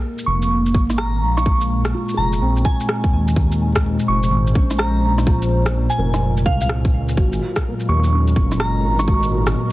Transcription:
Already playing: ambient pad A#2 G#3 A#3, felt piano A#3
0.18 shaker
0.26 detuned saw bass F1, synth bell C#6
0.42 shaker
0.66 shaker
0.75 detuned saw bass G#1, kick
0.90 cross-stick, shaker
0.98 synth bell A#5, cross-stick
1.22 detuned saw bass A#1
1.37 synth bell C#6, cross-stick, shaker
1.46 kick
1.61 shaker
1.85 cross-stick, shaker
1.94 felt piano F4
2.09 shaker
2.14 detuned saw bass F1, felt piano G#4, synth bell A#5
2.33 shaker
2.41 detuned saw bass A#1, felt piano C4
2.57 shaker
2.65 synth bell G#5, kick
2.80 shaker
2.89 cross-stick
3.04 kick
3.13 detuned saw bass D#2
3.28 shaker
3.36 ambient pad C5, kick
3.52 shaker
3.75 kick, cross-stick, shaker
3.99 shaker
4.08 detuned saw bass F1, synth bell C#6
4.23 shaker
4.31 detuned saw bass G#1
4.47 shaker
4.55 detuned saw bass A#1, felt piano C#4, kick
4.71 cross-stick, shaker
4.79 synth bell A#5, cross-stick
5.18 cross-stick, shaker
5.27 felt piano F4, kick
5.42 shaker
5.66 cross-stick, shaker
5.90 synth bell G#5, shaker
5.98 detuned saw bass F1, felt piano A#4
6.14 cross-stick, shaker
6.37 shaker
6.46 detuned saw bass C2, synth bell F5, kick
6.61 synth bell F5, shaker
6.69 cross-stick
6.85 kick
6.93 detuned saw bass C#2
7.09 shaker
7.17 detuned saw bass G#1, ambient pad F#3 G#3, synth texture A#3 A#4, felt piano F#4, kick
7.33 shaker
7.56 kick, cross-stick, shaker
7.80 shaker
7.89 detuned saw bass D#2, synth bell C#6
8.04 shaker
8.12 felt piano C#4
8.28 shaker
8.36 detuned saw bass F#1, kick
8.52 cross-stick, shaker
8.60 synth bell A#5, cross-stick
8.84 detuned saw bass G#1
8.99 synth bell C#6, cross-stick, shaker
9.07 felt piano F#4, kick
9.23 shaker
9.32 felt piano F#4
9.47 cross-stick, shaker

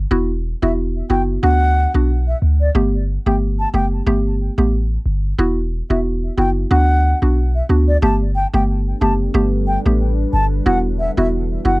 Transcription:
0.11 808-style bass E1, synth pluck B3 E4 F#4
0.62 808-style bass E1, synth pluck B3 E4 F#4, flute E5
1.10 808-style bass F#1, synth pluck B3 E4 F#4, flute G5
1.43 808-style bass D2, synth pluck B3 D4 F#4, flute F#5
1.94 808-style bass B1, synth pluck B3 D4 F#4
2.28 flute E5
2.42 808-style bass D2
2.61 flute D5
2.75 808-style bass G1, synth pluck A3 B3 G4
3.26 808-style bass G1, synth pluck A3 B3 G4, flute G5
3.60 flute A5
3.74 808-style bass F#1, synth pluck A3 B3 G4, flute G5
4.07 808-style bass G1, synth pluck A3 B3 G4
4.58 808-style bass A1, synth pluck A3 B3 G4
5.06 808-style bass G1
5.39 808-style bass E1, synth pluck B3 E4 F#4
5.90 808-style bass E1, synth pluck B3 E4 F#4, flute E5
6.37 808-style bass F#1, synth pluck B3 E4 F#4, flute G5
6.70 808-style bass D2, synth pluck B3 D4 F#4, flute F#5
7.22 808-style bass B1, synth pluck B3 D4 F#4
7.55 flute E5
7.69 808-style bass D2, synth pluck B3 D4 F#4
7.88 flute D5
8.02 808-style bass G1, ambient pad G3 D4 A4 B4, synth pluck A3 B3 G4, flute A5
8.35 flute G5
8.54 808-style bass G1, synth pluck A3 B3 G4, flute G5
9.01 808-style bass F#1, synth pluck A3 B3 G4, flute A5
9.34 808-style bass G1, synth pluck A3 B3 G4
9.67 flute G5
9.86 808-style bass A1, synth pluck A3 B3 G4
10.33 808-style bass G1, flute A5
10.66 808-style bass E1, ambient pad E3 E4 F#4, synth pluck B3 E4 F#4, flute F#5
10.99 flute E5
11.17 808-style bass E1, synth pluck B3 E4 F#4, flute E5
11.65 808-style bass F#1, synth pluck B3 E4 F#4, flute F#5

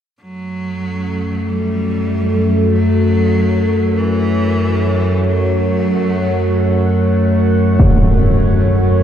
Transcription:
0.20 synth drone F#2 A3, cello F#3, ambient pad F#4
0.54 ambient pad C#5
1.48 cello G3
2.73 cello F#3
3.98 cello E3
4.17 ambient pad F#5
5.24 cello F#3
7.79 impact

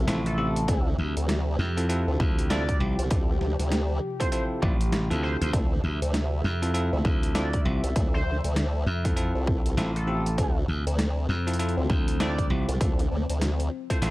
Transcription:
Already playing: ambient pad C3 F3 E5
0.07 slap bass A1, tine electric piano C4 E4 F4 A4, snare, closed hi-hat
0.26 analog synth lead A4, closed hi-hat
0.38 tine electric piano C4 E4 F4 G4
0.56 closed hi-hat
0.68 wobble bass D2, tine electric piano C4 E4 F4 A4, ambient pad G4, kick, closed hi-hat
0.98 slap bass D2
1.17 wobble bass D2, closed hi-hat
1.29 snare, closed hi-hat
1.59 slap bass F2, snare
1.77 tine electric piano C4 E4 F4 A4, closed hi-hat
1.89 tine electric piano C4 E4 F4 A4, closed hi-hat
2.08 wobble bass D2
2.20 slap bass D2, kick, snare
2.39 closed hi-hat
2.50 tine electric piano C4 E4 F4 A4, analog synth lead D5, snare, closed hi-hat
2.69 kick, closed hi-hat
2.80 slap bass C2, tine electric piano C4 E4 F4 G4
2.99 wobble bass C2, closed hi-hat
3.10 wobble bass D2, tine electric piano C4 E4 F4 A4, kick, closed hi-hat
3.41 wobble bass D2, snare
3.59 wobble bass D2, snare, closed hi-hat
3.72 snare, closed hi-hat
4.20 tine electric piano C4 E4 F4 A4, analog synth lead C5, kick, closed hi-hat
4.32 tine electric piano C4 E4 F4 A4, analog synth lead C5, closed hi-hat
4.62 slap bass A1, tine electric piano C4 E4 F4 D5, kick
4.81 closed hi-hat
4.93 snare, closed hi-hat
5.10 slap bass D2, tine electric piano C4 E4 F4 A4, closed hi-hat
5.23 analog synth lead C5
5.41 slap bass D2, analog synth lead C5, closed hi-hat
5.53 wobble bass D2, tine electric piano C4 E4 F4 A4, ambient pad E5, kick, closed hi-hat
5.84 slap bass D2
6.02 wobble bass D2, closed hi-hat
6.14 snare, closed hi-hat
6.44 slap bass F2, snare
6.62 tine electric piano C4 E4 F4 A4, closed hi-hat
6.74 tine electric piano C4 E4 F4 A4, closed hi-hat
6.93 wobble bass D2
7.05 slap bass D2, kick, snare
7.23 closed hi-hat
7.35 tine electric piano C4 E4 F4 A4, analog synth lead D5, snare, closed hi-hat
7.53 kick, closed hi-hat
7.65 slap bass C2, tine electric piano C4 E4 F4 G4
7.84 wobble bass C2, closed hi-hat
7.96 wobble bass D2, tine electric piano C4 E4 F4 A4, kick, closed hi-hat
8.14 analog synth lead C5
8.26 wobble bass D2
8.44 wobble bass D2, closed hi-hat
8.56 snare, closed hi-hat
8.86 slap bass F2
9.05 tine electric piano C4 E4 F4 A4, kick, closed hi-hat
9.16 tine electric piano C4 E4 F4 A4, closed hi-hat
9.35 wobble bass C2
9.47 kick
9.66 wobble bass C2, closed hi-hat
9.77 slap bass A1, tine electric piano C4 E4 F4 A4, snare, closed hi-hat
9.96 analog synth lead A4, closed hi-hat
10.07 tine electric piano C4 E4 F4 G4
10.26 closed hi-hat
10.38 wobble bass D2, ambient pad C4, tine electric piano C4 E4 F4 A4, kick, closed hi-hat
10.68 slap bass D2
10.87 wobble bass D2, closed hi-hat
10.99 snare, closed hi-hat
11.29 slap bass F2, snare
11.47 tine electric piano C4 E4 F4 A4, closed hi-hat
11.53 closed hi-hat
11.59 tine electric piano C4 E4 F4 A4, closed hi-hat
11.69 closed hi-hat
11.77 wobble bass D2
11.90 slap bass D2, kick, snare
12.08 closed hi-hat
12.20 tine electric piano C4 E4 F4 A4, analog synth lead D5, snare, closed hi-hat
12.38 kick, closed hi-hat
12.50 slap bass C2, tine electric piano C4 E4 F4 G4
12.69 wobble bass C2, closed hi-hat
12.81 wobble bass D2, tine electric piano C4 E4 F4 A4, kick, closed hi-hat
12.99 closed hi-hat
13.11 wobble bass D2
13.29 wobble bass D2, closed hi-hat
13.41 snare, closed hi-hat
13.60 closed hi-hat
13.90 tine electric piano C4 E4 F4 A4, analog synth lead C5, kick, closed hi-hat
14.02 slap bass A1, tine electric piano C4 E4 F4 A4, analog synth lead C5, snare, closed hi-hat

